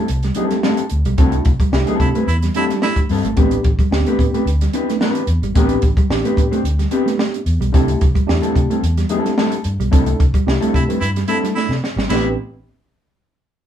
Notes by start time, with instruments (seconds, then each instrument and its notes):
0.08 fingered electric bass C2, closed hi-hat
0.23 clean electric guitar G3, snare, closed hi-hat
0.34 clean electric guitar G3 C4 E4 A4, tine electric piano A3 D4 E4 G4, muted clean electric guitar stroke, closed hi-hat
0.50 clean electric guitar A3, snare, closed hi-hat
0.63 clean electric guitar G3 A3 C4 E4 A4, snare
0.77 muted clean electric guitar stroke, closed hi-hat
0.90 fingered electric bass D2, closed hi-hat
1.05 fingered electric bass B1, clean electric guitar G3, closed hi-hat
1.17 fingered electric bass C2, clean electric guitar G3 C4 E4 A4, tine electric piano A3 D4 E4 F#4, kick, closed hi-hat
1.32 closed hi-hat
1.45 fingered electric bass C2, muted clean electric guitar stroke, kick, closed hi-hat
1.60 clean electric guitar G3, kick, closed hi-hat
1.72 fingered electric bass C2, tine electric piano A3 D4 E4 G4, snare
1.87 clean electric guitar G3 A3 C4 E4 A4, closed hi-hat
2.00 fingered electric bass C3, baritone saxophone E4, muted clean electric guitar stroke, kick, closed hi-hat
2.15 clean electric guitar G3 A3 C4 E4 B4, closed hi-hat
2.27 fingered electric bass E2, baritone saxophone E4, closed hi-hat
2.42 clean electric guitar G3, snare, closed hi-hat
2.54 clean electric guitar G3 C4 E4 A4, tine electric piano A3 D4 E4 G4, baritone saxophone E4, muted clean electric guitar stroke, closed hi-hat
2.70 clean electric guitar G3, snare, closed hi-hat
2.82 clean electric guitar A3, baritone saxophone E4, snare
2.96 muted clean electric guitar stroke, kick, closed hi-hat
3.09 fingered electric bass G2, clean electric guitar G3 C4 E4 A4, open hi-hat
3.24 fingered electric bass G#1, clean electric guitar A3, closed hi-hat
3.36 fingered electric bass A1, clean electric guitar A3 C4 D4 G4 B4, tine electric piano B3 C4 D4 G4, kick, closed hi-hat
3.51 closed hi-hat
3.64 fingered electric bass A1, muted clean electric guitar stroke, kick, closed hi-hat
3.79 clean electric guitar G3, kick, closed hi-hat
3.91 fingered electric bass D2, tine electric piano B3 C4 D4 G4, snare
4.06 clean electric guitar A3 C4 D4 G4 B4, closed hi-hat
4.19 fingered electric bass A2, muted clean electric guitar stroke, kick, closed hi-hat
4.34 clean electric guitar A3 C4 D4 G4 B4, closed hi-hat
4.46 fingered electric bass D2, closed hi-hat
4.61 clean electric guitar G3, snare, closed hi-hat
4.73 tine electric piano B3 C4 D4 E4, clean electric guitar C4 D4 G4 B4, muted clean electric guitar stroke, closed hi-hat
4.89 clean electric guitar A3, snare, closed hi-hat
5.01 clean electric guitar A3 C4 D4 G4 B4, snare
5.15 muted clean electric guitar stroke, closed hi-hat
5.27 fingered electric bass E2, closed hi-hat
5.42 fingered electric bass G#1, clean electric guitar G3, closed hi-hat
5.55 fingered electric bass A1, clean electric guitar A3 C4 D4 G4 B4, tine electric piano B3 C4 D4 G4, kick, closed hi-hat
5.69 closed hi-hat
5.82 fingered electric bass A1, muted clean electric guitar stroke, kick, closed hi-hat
5.97 clean electric guitar G3, kick, closed hi-hat
6.10 fingered electric bass A1, tine electric piano B3 C4 D4 G4, snare
6.25 clean electric guitar A3 C4 D4 G4 B4, closed hi-hat
6.37 fingered electric bass A2, muted clean electric guitar stroke, kick, closed hi-hat
6.51 clean electric guitar A3 C4 D4 G4 C5, closed hi-hat
6.64 fingered electric bass D2, closed hi-hat
6.79 clean electric guitar G3, snare, closed hi-hat
6.91 tine electric piano B3 C4 D4 G4, clean electric guitar C4 D4 G4 B4, muted clean electric guitar stroke, closed hi-hat
7.06 clean electric guitar A3, snare, closed hi-hat
7.18 clean electric guitar A3, snare
7.34 muted clean electric guitar stroke, closed hi-hat
7.46 fingered electric bass E2, closed hi-hat
7.60 fingered electric bass B1, clean electric guitar G3, closed hi-hat
7.72 fingered electric bass C2, clean electric guitar G3 C4 E4 A4, tine electric piano A3 D4 E4 G4, kick, closed hi-hat
7.88 closed hi-hat
8.01 fingered electric bass C2, muted clean electric guitar stroke, kick, closed hi-hat
8.15 clean electric guitar G3, kick, closed hi-hat
8.27 fingered electric bass E2, tine electric piano A3 D4 E4 G4, snare
8.42 clean electric guitar G3 A3 C4 E4 A4, closed hi-hat
8.55 fingered electric bass C3, muted clean electric guitar stroke, kick, closed hi-hat
8.70 clean electric guitar G3 A3 C4 E4 A4, closed hi-hat
8.83 fingered electric bass E2, closed hi-hat
8.97 clean electric guitar G3, snare, closed hi-hat
9.09 clean electric guitar G3 C4 E4 A4, tine electric piano A3 D4 E4 G4, muted clean electric guitar stroke, closed hi-hat
9.25 clean electric guitar A3, snare, closed hi-hat
9.37 clean electric guitar G3 A3 C4 E4 A4, snare
9.52 muted clean electric guitar stroke, closed hi-hat
9.64 fingered electric bass G2, closed hi-hat
9.79 fingered electric bass B1, clean electric guitar G3, closed hi-hat
9.91 fingered electric bass C2, clean electric guitar G3 C4 E4 A4, tine electric piano A3 D4 E4 A4, kick, closed hi-hat
10.06 closed hi-hat
10.20 fingered electric bass C2, muted clean electric guitar stroke, kick, closed hi-hat
10.34 clean electric guitar G3, kick, closed hi-hat
10.46 fingered electric bass C2, tine electric piano A3 D4 E4 G4, snare
10.61 clean electric guitar G3 A3 C4 E4 A4, closed hi-hat
10.74 fingered electric bass C3, baritone saxophone E4, muted clean electric guitar stroke, kick, closed hi-hat
10.88 clean electric guitar G3 A3 C4 E4 B4, closed hi-hat
11.01 fingered electric bass G2, baritone saxophone E4, closed hi-hat
11.16 clean electric guitar G3, snare, closed hi-hat
11.28 clean electric guitar G3 C4 E4 A4, tine electric piano A3 D4 E4 A4, baritone saxophone E4, muted clean electric guitar stroke, closed hi-hat
11.44 clean electric guitar G3, snare, closed hi-hat
11.55 clean electric guitar A3, baritone saxophone E4, snare
11.69 fingered electric bass C3, muted clean electric guitar stroke, snare
11.84 snare
11.96 fingered electric bass G#1, clean electric guitar G3, snare
12.09 fingered electric bass A1, clean electric guitar A3 C4 D4 G4 B4, tine electric piano B3 C4 D4 G4, baritone saxophone E4, snare, crash